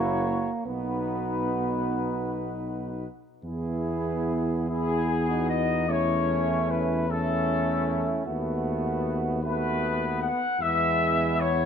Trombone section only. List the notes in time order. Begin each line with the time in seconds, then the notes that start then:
Already playing: E4
0.67 D#4
3.44 E4
4.69 E4
5.29 D#4
5.89 C#4
7.09 C#4
8.27 B3
9.44 B3
10.60 B3